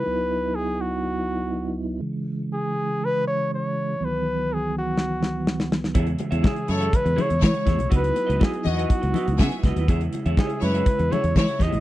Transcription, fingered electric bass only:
\new Staff \with { instrumentName = "Fingered electric bass" } { \clef bass \time 4/4 \key e \major \tempo 4 = 122 r1 | r1 | r1 | e,8 r16 e,16 r8 fis,8 r16 e,16 r16 e,16 e16 r16 e,16 b,,16 |
cis,8 r16 cis,16 r8 e,8 r16 cis,16 r16 cis,16 cis16 r16 cis,16 dis,16 | e,8 r16 e,16 r8 fis,8 r16 e,16 r16 e,16 e16 r16 e,16 a,,16 | }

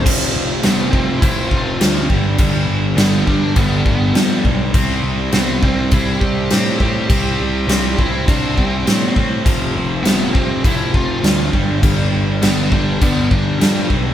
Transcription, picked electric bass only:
\new Staff \with { instrumentName = "Picked electric bass" } { \clef bass \time 4/4 \key g \mixolydian \tempo 4 = 102 f,,8 f,,8 f,,8 f,,8 f,,8 f,,8 d,8 g,,8 | g,,8 g,,8 g,,8 g,,8 g,,8 g,,8 f,8 b,,8 | c,8 c,8 c,8 c,8 c,8 c,8 a,8 a,8 | c,8 c,8 c,8 c,8 c,8 c,8 a,8 a,8 |
f,,8 f,,8 f,,8 f,,8 f,,8 f,,8 d,8 g,,8 | g,,8 g,,8 g,,8 g,,8 g,,8 g,,8 f,8 b,,8 | }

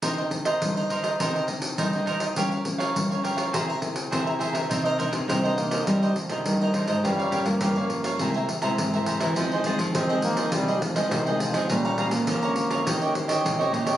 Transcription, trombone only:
\new Staff \with { instrumentName = "Trombone" } { \clef bass \time 4/4 \key c \minor \tempo 4 = 103 r1 | r1 | r4 c'8 bes8 g8 f8 ees8 f8 | g8. bes2 r4 r16 |
r4 c'8 bes8 g8 f8 ees8 f8 | g8. bes2 r4 r16 | }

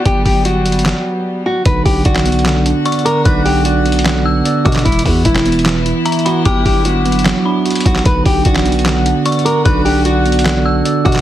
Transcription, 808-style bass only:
\new Staff \with { instrumentName = "808-style bass" } { \clef bass \time 4/4 \key b \minor \tempo 4 = 150 g,,8 g,,4.~ g,,16 r4. r16 | b,,8 b,,8 b,,4.~ b,,16 r4 r16 | b,,2. r8 b,8 | e,,8 e,8 e,,4.~ e,,16 r4 r16 |
g,,8 g,,4.~ g,,16 r4 r16 b,,8 | b,,8 b,,8 b,,4.~ b,,16 r4 r16 | b,,2. r8 b,8 | }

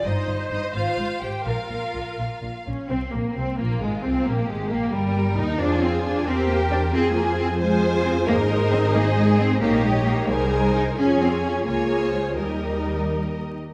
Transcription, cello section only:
\new Staff \with { instrumentName = "Cello section" } { \time 6/8 \key bes \mixolydian \tempo 4. = 88 g,8 g,8 g,8 aes,8 aes,8 aes,8 | bes,8 bes,8 bes,8 bes,8 bes,8 <bes, des'>8 | c'8 bes8 c'8 bes8 aes8 c'8 | bes8 aes8 bes8 g4 ees'8 |
d'8 c'8 d'8 c'8 bes8 d'8 | c'8 bes8 c'8 aes4 c'8 | \key aes \major bes8 aes8 c'8 bes8 aes8 c'8 | bes8 aes8 bes8 g4 ees'8 |
des'8 c'8 des'8 bes4 aes8 | g2~ g8 r8 | }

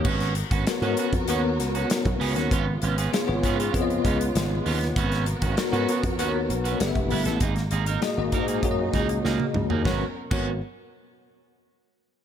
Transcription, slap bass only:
\new Staff \with { instrumentName = "Slap bass" } { \clef bass \time 4/4 \key gis \dorian \tempo 4 = 98 gis,,8. gis,,16 r16 gis,16 r16 eis,16 dis,8 cis,8 r16 b,,16 cis,16 dis,16 | gis,,8 gis,,8 r16 gis,,16 gis,8 eis,8 cis,8 gis,,8 dis,8 | gis,,8. gis,,16 r16 gis,16 r16 eis,16 dis,8 b,,8 g,,16 e,,16 g,,16 a,,16 | gis,,8 gis,,8 r16 gis,,16 gis,8 fis,8 cis,8 cis,16 r16 cis,16 dis,16 |
gis,,16 r8 gis,,8 r2 r8. | }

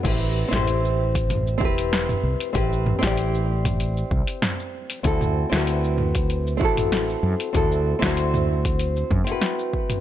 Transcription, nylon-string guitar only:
\new Staff \with { instrumentName = "Nylon-string guitar" } { \time 4/4 \key a \dorian \tempo 4 = 96 <c' e' g' b'>8. <c' e' g' c''>4.~ <c' e' g' c''>16 <c' e' g' b'>4. | <c' e' g' b'>8. <c' e' g' d''>2.~ <c' e' g' d''>16 | <c' e' fis' a'>8. <c' e' fis' b'>4.~ <c' e' fis' b'>16 <c' e' fis' a'>4. | <c' e' fis' a'>8. <c' e' fis' c''>2 <c' e' fis' b'>4~ <c' e' fis' b'>16 | }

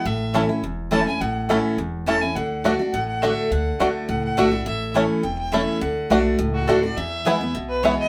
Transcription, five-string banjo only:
\new Staff \with { instrumentName = "Five-string banjo" } { \time 4/4 \key a \major \tempo 4 = 208 r4 <a cis' e'>8 r4. <a cis' e'>8 r8 | r4 <a cis' e'>8 r4. <a cis' e'>8 r8 | r4 <a d' fis'>8 r4. <a d' fis'>8 r8 | r4 <a d' fis'>8 r4. <a d' fis'>8 r8 |
r4 <a cis' e'>8 r4. <a cis' e'>8 r8 | r4 <a d' fis'>8 r4. <a d' fis'>8 r8 | r4 <b e'>8 r4. <b e'>8 r8 | }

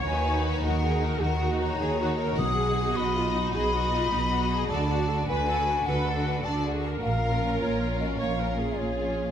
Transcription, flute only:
\new Staff \with { instrumentName = "Flute" } { \time 12/8 \key b \lydian \tempo 4. = 103 gis''4 r8 fis''4. fis''4 ais''2 | dis'''4. b''4. b''2. | a''4. gis''4. fis''4. a''8 r4 | eis''4. cis''4 dis''8 eis''4. cis''4. | }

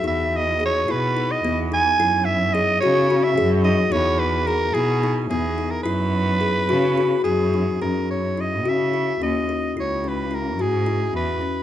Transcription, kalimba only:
\new Staff \with { instrumentName = "Kalimba" } { \time 7/8 \key fis \mixolydian \tempo 4 = 109 dis'4 gis'8 e'8 dis'8 b8 dis'8 | e'4 gis'8 fis'8 fis'8 gis'8 dis'8 | dis'4 gis'8 e'8 dis'8 b8 dis'8 | e'4 gis'8 fis'8 fis'8 gis'8 dis'8 |
cis'4 e'8 fis'8 e'8 cis'8 dis'8 | e'8 cis'8 e'8 fis'8 e'4 cis'8 | }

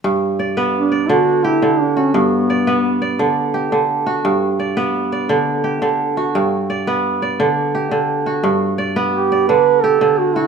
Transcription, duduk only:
\new Staff \with { instrumentName = "Duduk" } { \time 12/8 \key g \major \tempo 4. = 114 r2 d'4 fis'4 e'4 d'8 cis'8 | b2. r2. | r1. | r1. |
r2 g'4 b'4 a'4 fis'8 e'8 | }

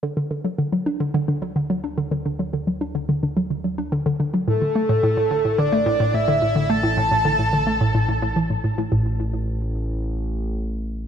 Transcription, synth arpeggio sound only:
\new Staff \with { instrumentName = "Synth arpeggio sound" } { \clef bass \time 4/4 \key d \mixolydian \tempo 4 = 108 d16 d16 d16 fis16 d16 fis16 d'16 d16 d16 d16 fis16 d16 fis16 d'16 d16 d16 | d16 fis16 d16 fis16 d'16 d16 d16 d16 fis16 d16 fis16 d'16 d16 d16 d16 fis16 | a,16 d16 a16 a,16 a,16 a,16 d16 a,16 d16 a16 a,16 a,16 a,16 d16 a,16 d16 | a16 a,16 a,16 a,16 d16 a,16 d16 a16 a,16 a,16 a,16 a,16 e16 a,16 a,16 a,16 |
a,8 r2. r8 | }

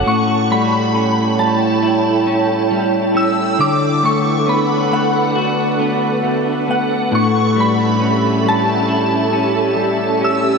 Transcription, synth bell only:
\new Staff \with { instrumentName = "Synth bell" } { \time 4/4 \key a \mixolydian \tempo 4 = 68 cis'''8 b''4 a''2 e'''8 | d'''8 cis'''8 b''8 fis''4 r4 fis''8 | cis'''8 b''4 a''2 e'''8 | }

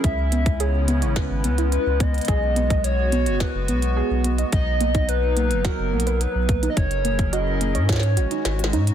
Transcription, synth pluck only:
\new Staff \with { instrumentName = "Synth pluck" } { \time 4/4 \key cis \dorian \tempo 4 = 107 r8 b16 r16 gis'16 r16 b16 cis''16 r8 b16 e'16 r8 b16 r16 | gis'16 r16 b16 dis''16 r8 b16 fis'16 r8 b16 r16 gis'16 r16 b16 dis''16 | r8 ais16 dis'16 r8 ais16 r16 fis'16 r16 ais16 b'16 r8 ais16 dis'16 | r8 ais16 r16 fis'16 r16 ais16 cis''16 r8 fis'16 dis'16 r16 fis'16 dis'16 r16 | }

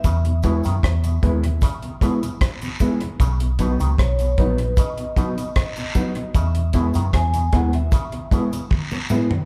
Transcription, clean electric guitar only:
\new Staff \with { instrumentName = "Clean electric guitar" } { \time 4/4 \key e \lydian \tempo 4 = 76 r8 <gis b e'>16 r8. <gis b e'>16 r8. <gis b e'>16 r8. <gis b e'>16 r16 | r8 <fis b dis'>16 r8. <fis b dis'>16 r8. <fis b dis'>16 r8. <fis b dis'>16 r16 | r8 <gis b e'>16 r8. <gis b e'>16 r8. <gis b e'>16 r8. <gis b e'>16 r16 | }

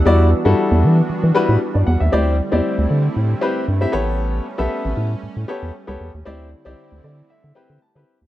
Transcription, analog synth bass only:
\new Staff \with { instrumentName = "Analog synth bass" } { \clef bass \time 4/4 \key e \minor \tempo 4 = 116 e,8. g,16 r16 e,16 e8 e16 e16 r16 a,16 r16 g,16 e,16 dis,16 | d,8. e,16 r16 d,16 d8 a,8 r8 g,8 a,,8~ | a,,8. b,,16 r16 a,,16 a,8 a,16 a,16 r16 e,16 r16 cis,16 e,16 dis,16 | d,8. c,16 r16 d,16 d8 r16 d16 r16 d16 r16 d16 r16 dis,16 | }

